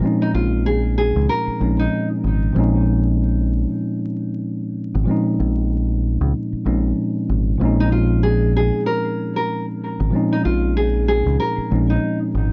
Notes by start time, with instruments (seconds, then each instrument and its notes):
0.00 tine electric piano A#2 F3 G#3 C4
0.04 tine electric piano C#4 D#4
0.22 nylon-string guitar D#4
0.35 fingered electric bass A#1, nylon-string guitar F4
0.66 nylon-string guitar G#4
0.98 nylon-string guitar G#4
1.16 fingered electric bass C#2
1.29 nylon-string guitar A#4
1.47 muted fingered electric bass stroke
1.59 fingered electric bass A#1, tine electric piano A#2 F3 G#3 C4 C#4 D#4
1.79 nylon-string guitar D#4
2.24 fingered electric bass G#1
2.53 fingered electric bass A#1, tine electric piano A#2 F3 G#3
2.57 tine electric piano C4 C#4 D#4
4.95 fingered electric bass G#1
5.04 tine electric piano A#2 F3 G#3
5.08 tine electric piano C4 C#4 D#4
5.40 fingered electric bass A#1
6.21 fingered electric bass C#2
6.53 muted fingered electric bass stroke
6.65 fingered electric bass A#1, tine electric piano A#2 F3 G#3 C4 C#4 D#4
7.29 fingered electric bass G#1
7.58 fingered electric bass A#1, tine electric piano A#2 F3 G#3 C4
7.64 tine electric piano C#4 D#4
7.80 nylon-string guitar D#4
7.92 nylon-string guitar F4
8.23 nylon-string guitar G#4
8.56 nylon-string guitar G#4
8.86 nylon-string guitar A#4
9.36 nylon-string guitar A#4
10.00 fingered electric bass G#1
10.09 tine electric piano A#2 F3 G#3
10.13 tine electric piano C4 C#4 D#4
10.33 nylon-string guitar D#4
10.45 fingered electric bass A#1, nylon-string guitar F4
10.77 nylon-string guitar G#4
11.08 nylon-string guitar G#4
11.26 fingered electric bass C#2
11.40 nylon-string guitar A#4
11.58 muted fingered electric bass stroke
11.70 fingered electric bass A#1, tine electric piano A#2 F3 G#3 C4 C#4 D#4
11.90 nylon-string guitar D#4
12.35 fingered electric bass G#1